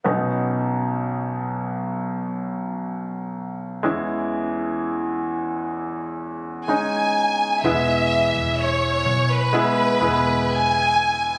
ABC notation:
X:1
M:4/4
L:1/16
Q:1/4=63
K:B
V:1 name="Violin section"
z16 | z12 g4 | [K:Elyd] e4 c3 B4- B g4 |]
V:2 name="Grand piano"
[B,CD]16 | [G,CE]12 [G,CD]4 | [K:Elyd] [G,B,E]8 [G,B,E]2 [G,B,E]6 |]
V:3 name="Grand piano" clef=bass
[B,,,B,,]16 | [E,,E,]16 | [K:Elyd] E,6 z8 z2 |]
V:4 name="Fingered electric bass" clef=bass
z16 | z16 | [K:Elyd] E,,,3 E,,,3 B,,,4 E,,,6 |]